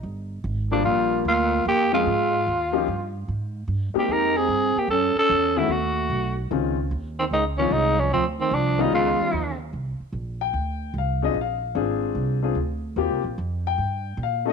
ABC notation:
X:1
M:4/4
L:1/8
Q:"Swing" 1/4=148
K:Cm
V:1 name="Tenor saxophone"
z3 D F2 F2 | G F6 z | z3 G B A2 G | =A A2 =E ^F3 z |
z3 C E _D E D | C C D E F3 z | z8 | z8 |
z8 |]
V:2 name="Grand piano"
z3 [F,G,B,DF]3 z2 | z [F,B,C_DA] z3 [F,B,DEG] z2 | z3 [A,B,CEG]3 z2 | z3 [E,=A,=B,^C^F] z4 |
[E,A,C_DF] z4 [E,A,CDF] z2 | z3 [E,A,=B,_DF]3 z2 | z3 g3 f [CDFAe] | f2 [CDFA]3 [CDFA] z2 |
[B,CFG] z2 g3 f [=A,_DE=A] |]
V:3 name="Trombone" clef=bass
z3 F, B,2 B,2 | B, A,3 z4 | z3 B, E C2 B, | ^C C2 A, =A,3 z |
z3 E, A, F, A, F, | F, E, F, G, A,3 z | z8 | z8 |
z8 |]
V:4 name="Upright bass" clef=bass
G,,,2 A,,,2 B,,,2 D,,2 | F,,2 A,,2 E,,2 G,,2 | A,,2 G,, z F,,2 G,, z | ^F,, z =E,,2 ^D,,2 =B,,,2 |
_D,,2 E,,2 D,,2 C,,2 | D,,2 C,,2 _D,, z E,,2 | C,, z B,,,2 D,,2 C,,2 | B,,,2 A,,,2 C,,2 D,,2 |
(3E,, C,, B,,, F,,2 G,,2 B,,2 |]